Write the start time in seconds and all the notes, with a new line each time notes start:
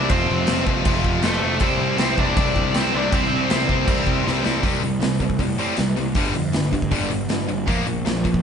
Already playing: C4
0.09 F1 F2 C3 F3 A3 C4 F4 C5, kick, crash
0.30 F1
0.47 F1 F2 C3 F3 A3 C4 F4, snare, crash
0.66 F1 F2 C3 F3 A3 C4 F4, kick
0.85 F1 F2 C3 F3 A3 C4 F4, kick, crash
1.04 F1, kick
1.23 F1 F2 C3 F3 A3 C4 F4 A4, snare, crash
1.42 F1 F2 C3 F3 A3 C4 F4
1.60 C2 C3 G3 C4 E4 C5, kick, crash
1.80 C2
1.98 C2 C3 G3 C4 E4, snare, crash
2.18 C2 C3 G3 C4 D4 E4 D5, kick
2.36 C2 C3 G3 C4 E4, kick, crash
2.56 C2, kick
2.74 C2 C3 G3 C4 E4 C5, snare, crash
2.92 C2 C3 G3 C4 D4 E4
2.98 D5
3.11 C2 C3 G3 C4 E4, kick, crash
3.15 C5
3.32 C2
3.49 C2 C3 G3 C4 E4, snare, crash
3.68 C2 C3 G3 C4 E4, kick
3.88 C2 C3 G3 C4 E4, kick, crash
4.07 C2, kick
4.27 C2 C3 G3 C4 E4, snare
4.44 C2 C3 G3 C4 E4, snare
4.63 C2 C3 G3 C4, kick, open hi-hat
4.83 C2 C3 G3, open hi-hat
5.02 C2 C3 G3, snare, open hi-hat
5.20 C2 C3 G3, kick, open hi-hat
5.30 kick
5.39 A2 C3 G3, kick, open hi-hat
5.58 A2 C3 G3 C4, open hi-hat
5.77 C2 C3 G3, snare, open hi-hat
5.97 C2 C3 G3, open hi-hat
6.15 G1 G2 D3 G3, kick, open hi-hat
6.34 F2 G2 D3, open hi-hat
6.53 G1 G2 D3, snare, open hi-hat
6.73 G2 D3, kick, open hi-hat
6.82 kick
6.91 G1 G2 D3 G3, kick, open hi-hat
7.10 G1 G2 D3, open hi-hat
7.29 G1 G2 D3, snare, open hi-hat
7.48 G1 G2 D3, open hi-hat
7.67 A#1 A#2 F3 A#3, kick, open hi-hat
7.86 A#1 A#2 F3, open hi-hat
8.05 A#1 A#2 F3, snare, open hi-hat
8.24 A#1 A#2 F3, kick, open hi-hat
8.34 kick